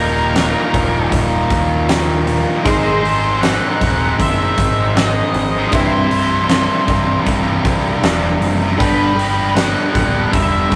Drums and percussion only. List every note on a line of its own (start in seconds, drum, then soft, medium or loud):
0.36 snare medium
0.36 open hi-hat medium
0.74 kick medium
0.74 open hi-hat soft
1.12 kick medium
1.12 open hi-hat medium
1.50 kick medium
1.50 open hi-hat medium
1.89 snare loud
1.89 open hi-hat medium
2.27 open hi-hat medium
2.66 kick loud
2.66 open hi-hat medium
3.05 open hi-hat soft
3.43 snare loud
3.43 open hi-hat medium
3.81 kick medium
3.81 open hi-hat medium
4.20 kick medium
4.20 open hi-hat medium
4.58 kick medium
4.58 open hi-hat medium
4.97 snare loud
4.97 open hi-hat medium
5.34 open hi-hat soft
5.72 kick loud
5.72 open hi-hat medium
6.11 open hi-hat soft
6.49 snare medium
6.49 open hi-hat medium
6.88 kick medium
6.88 open hi-hat medium
7.26 kick medium
7.26 open hi-hat medium
7.65 kick medium
7.65 open hi-hat medium
8.03 snare loud
8.03 open hi-hat medium
8.42 open hi-hat medium
8.80 kick loud
8.80 open hi-hat medium
9.19 open hi-hat soft
9.56 snare loud
9.56 open hi-hat medium
9.95 kick medium
9.95 open hi-hat medium
10.33 kick medium
10.33 open hi-hat medium
10.72 kick medium
10.72 open hi-hat medium